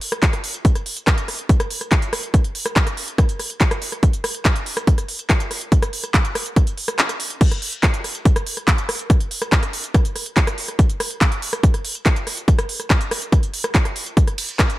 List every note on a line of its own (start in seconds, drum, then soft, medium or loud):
0.01 open hi-hat loud
0.12 cross-stick medium
0.12 closed hi-hat soft
0.23 kick loud
0.23 clap loud
0.23 closed hi-hat medium
0.33 cross-stick soft
0.33 closed hi-hat soft
0.44 open hi-hat loud
0.54 closed hi-hat medium
0.65 kick loud
0.65 closed hi-hat medium
0.75 cross-stick soft
0.75 closed hi-hat medium
0.86 open hi-hat loud
0.97 closed hi-hat medium
1.07 kick loud
1.07 cross-stick medium
1.07 clap loud
1.07 closed hi-hat medium
1.18 closed hi-hat medium
1.28 cross-stick soft
1.28 open hi-hat loud
1.39 closed hi-hat medium
1.49 kick loud
1.49 closed hi-hat medium
1.60 cross-stick medium
1.60 closed hi-hat medium
1.70 open hi-hat loud
1.81 cross-stick soft
1.81 closed hi-hat soft
1.92 kick loud
1.92 clap loud
1.92 closed hi-hat medium
2.02 closed hi-hat medium
2.13 cross-stick medium
2.13 open hi-hat loud
2.23 closed hi-hat medium
2.34 kick loud
2.34 cross-stick soft
2.34 closed hi-hat medium
2.44 closed hi-hat medium
2.55 open hi-hat loud
2.66 cross-stick medium
2.66 closed hi-hat medium
2.76 kick loud
2.76 clap loud
2.76 closed hi-hat medium
2.87 cross-stick soft
2.87 closed hi-hat medium
2.97 open hi-hat loud
3.08 closed hi-hat medium
3.18 kick loud
3.18 cross-stick medium
3.18 closed hi-hat medium
3.29 closed hi-hat medium
3.39 cross-stick soft
3.39 open hi-hat loud
3.50 closed hi-hat medium
3.61 kick loud
3.61 clap loud
3.61 closed hi-hat medium
3.71 cross-stick medium
3.71 closed hi-hat medium
3.82 open hi-hat loud
3.92 cross-stick soft
3.92 closed hi-hat medium
4.03 kick loud
4.03 closed hi-hat medium
4.13 closed hi-hat medium
4.24 cross-stick medium
4.24 open hi-hat loud
4.35 closed hi-hat medium
4.45 kick loud
4.45 cross-stick soft
4.45 clap loud
4.45 closed hi-hat medium
4.56 closed hi-hat medium
4.66 open hi-hat loud
4.77 cross-stick medium
4.77 closed hi-hat medium
4.87 kick loud
4.87 closed hi-hat medium
4.98 cross-stick soft
4.98 closed hi-hat medium
5.09 open hi-hat loud
5.19 closed hi-hat medium
5.30 kick loud
5.30 cross-stick medium
5.30 clap loud
5.30 closed hi-hat medium
5.40 closed hi-hat medium
5.51 cross-stick soft
5.51 open hi-hat loud
5.61 closed hi-hat medium
5.72 kick loud
5.72 closed hi-hat medium
5.82 cross-stick medium
5.82 closed hi-hat medium
5.93 open hi-hat loud
6.04 cross-stick soft
6.04 closed hi-hat medium
6.14 kick loud
6.14 clap loud
6.14 closed hi-hat medium
6.25 closed hi-hat medium
6.35 cross-stick medium
6.35 open hi-hat loud
6.46 closed hi-hat medium
6.56 kick loud
6.56 cross-stick soft
6.56 closed hi-hat medium
6.67 closed hi-hat medium
6.78 open hi-hat loud
6.88 cross-stick medium
6.88 closed hi-hat medium
6.99 clap loud
6.99 closed hi-hat medium
7.09 cross-stick soft
7.09 closed hi-hat medium
7.20 open hi-hat loud
7.30 closed hi-hat medium
7.41 kick loud
7.41 closed hi-hat medium
7.41 crash medium
7.51 cross-stick soft
7.51 closed hi-hat medium
7.62 open hi-hat loud
7.73 closed hi-hat medium
7.83 kick loud
7.83 cross-stick medium
7.83 clap loud
7.83 closed hi-hat medium
7.94 closed hi-hat medium
8.04 cross-stick soft
8.04 open hi-hat loud
8.15 closed hi-hat medium
8.25 kick loud
8.25 closed hi-hat medium
8.36 cross-stick medium
8.36 closed hi-hat medium
8.47 open hi-hat loud
8.57 cross-stick soft
8.57 closed hi-hat medium
8.68 kick loud
8.68 clap loud
8.68 closed hi-hat medium
8.78 closed hi-hat medium
8.89 cross-stick medium
8.89 open hi-hat loud
8.99 closed hi-hat medium
9.10 kick loud
9.10 cross-stick soft
9.10 closed hi-hat medium
9.20 closed hi-hat medium
9.31 open hi-hat loud
9.42 cross-stick medium
9.42 closed hi-hat medium
9.52 kick loud
9.52 clap loud
9.52 closed hi-hat medium
9.63 cross-stick soft
9.63 closed hi-hat medium
9.73 open hi-hat loud
9.84 closed hi-hat medium
9.94 kick loud
9.94 cross-stick medium
9.94 closed hi-hat medium
10.05 closed hi-hat medium
10.16 cross-stick soft
10.16 open hi-hat loud
10.26 closed hi-hat medium
10.37 kick loud
10.37 clap loud
10.37 closed hi-hat medium
10.47 cross-stick medium
10.47 closed hi-hat medium
10.58 open hi-hat loud
10.68 cross-stick soft
10.68 closed hi-hat medium
10.79 kick loud
10.79 closed hi-hat medium
10.90 closed hi-hat medium
11.00 cross-stick medium
11.00 open hi-hat loud
11.11 closed hi-hat medium
11.21 kick loud
11.21 cross-stick soft
11.21 clap loud
11.21 closed hi-hat medium
11.32 closed hi-hat medium
11.42 open hi-hat loud
11.53 cross-stick medium
11.53 closed hi-hat medium
11.63 kick loud
11.63 closed hi-hat medium
11.74 cross-stick soft
11.74 closed hi-hat soft
11.85 open hi-hat loud
11.95 closed hi-hat medium
12.06 kick loud
12.06 cross-stick medium
12.06 clap loud
12.06 closed hi-hat medium
12.16 closed hi-hat medium
12.27 cross-stick soft
12.27 open hi-hat loud
12.37 closed hi-hat medium
12.48 kick loud
12.48 closed hi-hat medium
12.59 cross-stick medium
12.59 closed hi-hat medium
12.69 open hi-hat loud
12.80 cross-stick soft
12.80 closed hi-hat medium
12.90 kick loud
12.90 clap loud
12.90 closed hi-hat medium
13.01 closed hi-hat medium
13.11 cross-stick medium
13.11 open hi-hat loud
13.22 closed hi-hat medium
13.32 kick loud
13.32 cross-stick soft
13.32 closed hi-hat medium
13.43 closed hi-hat soft
13.54 open hi-hat loud
13.64 cross-stick medium
13.64 closed hi-hat medium
13.75 kick loud
13.75 clap loud
13.75 closed hi-hat medium
13.85 cross-stick soft
13.85 closed hi-hat medium
13.96 open hi-hat loud
14.06 closed hi-hat soft
14.17 kick loud
14.17 closed hi-hat medium
14.28 cross-stick soft
14.28 closed hi-hat soft
14.38 open hi-hat loud
14.38 ride medium
14.49 closed hi-hat medium
14.59 kick loud
14.59 cross-stick medium
14.59 clap loud
14.59 closed hi-hat medium
14.70 closed hi-hat medium